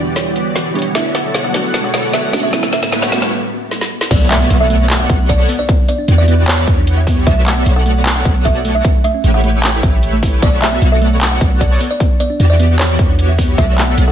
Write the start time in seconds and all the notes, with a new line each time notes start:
Already playing: E2 B2 D3 E3 G3 B3 D4 F#4 G4 D5, riser
0.16 C#5, snare, closed hi-hat
0.36 E3 B3 F#4 G4 D5, closed hi-hat
0.56 snare, closed hi-hat
0.65 E3 B3 F#4 G4 D5
0.74 E3 G3 B3 D4 F#4 G4 C#5, closed hi-hat
0.79 closed hi-hat
0.82 closed hi-hat
0.93 F#3 A3 B3 D4 E4 F#4 A4 C#5 D5 E5, snare, closed hi-hat
1.15 F#5, snare, closed hi-hat
1.34 B3 F#4 A4 C#5 D5 F#5, snare, closed hi-hat
1.44 F#5
1.52 A3 D4, snare, closed hi-hat
1.56 F#4
1.74 snare, closed hi-hat
1.84 F#5
1.94 B3 F#4 A4 C#5 D5 F#5, snare, closed hi-hat
2.13 E5, snare, closed hi-hat
2.32 A3 C#4 D4 F#4, snare, closed hi-hat
2.36 closed hi-hat
2.40 E5, closed hi-hat
2.51 A2 G3 B3 C#4, snare, closed hi-hat
2.55 E4
2.63 snare
2.73 E5, snare, closed hi-hat
2.83 snare
2.92 A3 E4 G4 B4 C#5, snare, closed hi-hat
3.02 F#5, snare
3.10 G3 B3 C#4, snare, closed hi-hat
3.14 F#4
3.22 snare
3.71 snare
3.81 snare
4.01 snare
4.11 B1 A3 B3 F#4 A4 C#5 D5 E5, kick, closed hi-hat, crash, impact
4.31 A3 E5, clap, closed hi-hat
4.41 B3
4.50 B1 B3 F#4 A4 C#5 D5 F#5, closed hi-hat
4.60 A4 E5
4.70 A3, closed hi-hat
4.90 A3, clap, closed hi-hat
5.00 F#5
5.09 B1 A3 B3 F#4 A4 C#5 D5 F#5, kick, closed hi-hat
5.20 B3
5.29 D5, kick, closed hi-hat
5.39 A4
5.49 B3, open hi-hat
5.59 D5
5.69 B3, kick, closed hi-hat
5.88 B3 D5, closed hi-hat
5.98 D4
6.08 E2 E3 B3 F#4 G4 D5, closed hi-hat
6.18 D5 E5
6.28 B3, closed hi-hat
6.48 B3 C#5, clap, closed hi-hat
6.67 E2 E3 B3 F#4 G4 C#5, kick, closed hi-hat
6.77 D4
6.87 closed hi-hat
6.97 E5
7.07 B3, kick, open hi-hat
7.27 B1 A3 B3 F#4 A4 C#5 D5 E5, kick, closed hi-hat
7.46 A3 F#5, clap, closed hi-hat
7.56 B3
7.66 B1 B3 F#4 A4 C#5 D5 F#5, closed hi-hat
7.76 A4 F#5
7.86 A3, closed hi-hat
8.06 A3, clap, closed hi-hat
8.16 F#5
8.25 B1 A3 B3 F#4 A4 C#5 D5 F#5, kick, closed hi-hat
8.35 B3
8.45 E5, kick, closed hi-hat
8.55 A4
8.65 A3, open hi-hat
8.75 E5
8.85 A3, kick, closed hi-hat
9.04 A3 E5, closed hi-hat
9.14 C#4
9.24 A1 A3 E4 G4 B4 C#5, closed hi-hat
9.34 E5 F#5
9.44 A3, closed hi-hat
9.63 A3 G5, clap, closed hi-hat
9.83 A1 A3 E4 G4 B4 C#5 E5, kick, closed hi-hat
9.93 E5
10.03 closed hi-hat
10.13 A3
10.23 E4, kick, open hi-hat
10.42 B1 A3 B3 F#4 A4 C#5 D5 E5, kick, closed hi-hat
10.62 A3 E5, clap, closed hi-hat
10.72 B3
10.82 B1 B3 F#4 A4 C#5 D5 F#5, closed hi-hat
10.92 A4 E5
11.02 A3, closed hi-hat
11.21 A3, clap, closed hi-hat
11.31 F#5
11.41 B1 A3 B3 F#4 A4 C#5 D5 F#5, kick, closed hi-hat
11.51 B3
11.61 D5, kick, closed hi-hat
11.71 A4
11.81 B3, open hi-hat
11.91 D5
12.00 B3, kick, closed hi-hat
12.20 B3 D5, closed hi-hat
12.30 D4
12.40 E2 E3 B3 F#4 G4 D5, closed hi-hat
12.50 D5 E5
12.59 B3, closed hi-hat
12.79 B3 C#5, clap, closed hi-hat
12.99 E2 E3 B3 F#4 G4 C#5, kick, closed hi-hat
13.09 D4
13.19 closed hi-hat
13.29 E5
13.38 B3, kick, open hi-hat
13.58 B1 A3 B3 F#4 A4 C#5 D5 E5, kick, closed hi-hat
13.78 A3 F#5, clap, closed hi-hat
13.88 B3
13.98 B1 B3 F#4 A4 C#5 D5 F#5, closed hi-hat
14.08 A4 F#5